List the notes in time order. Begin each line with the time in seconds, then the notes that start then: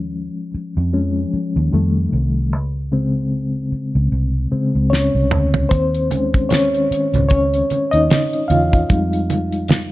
Already playing: D#2 F3 G#3 C#4
0.54 muted fingered electric bass stroke
0.77 F2
0.93 F3 G#3 C#4
1.34 muted fingered electric bass stroke
1.56 D#2
1.72 F2 D#3 G3 A3
2.13 C2
2.53 C#2
2.92 C#3 G#3 C4
3.72 muted fingered electric bass stroke
3.95 C#2
4.12 C2
4.51 C#3 G#3 C4, muted fingered electric bass stroke
4.75 C#2
4.90 C#4 C#5, snare
5.15 C2
5.31 D2, mid tom
5.54 floor tom
5.69 D#2 C4 C5, kick, closed hi-hat, muted conga
5.95 closed hi-hat
6.11 D#3 G#3 C#4, closed hi-hat, muted conga
6.34 kick, closed hi-hat
6.49 C#4 C#5, snare, closed hi-hat, high conga
6.74 closed hi-hat
6.91 muted fingered electric bass stroke, closed hi-hat
7.14 C#2, closed hi-hat, low conga
7.29 C#4 C#5, kick, closed hi-hat, muted conga
7.54 closed hi-hat
7.70 muted fingered electric bass stroke, closed hi-hat, muted conga
7.91 D#2 D#4 D#5, closed hi-hat
8.10 snare, closed hi-hat, high conga
8.33 closed hi-hat
8.48 E2 F4 F5, closed hi-hat, high conga
8.73 kick, closed hi-hat
8.89 F2 G3 G#3 D#4, kick, closed hi-hat
9.13 closed hi-hat
9.30 closed hi-hat, muted conga
9.52 closed hi-hat
9.68 snare, closed hi-hat, high conga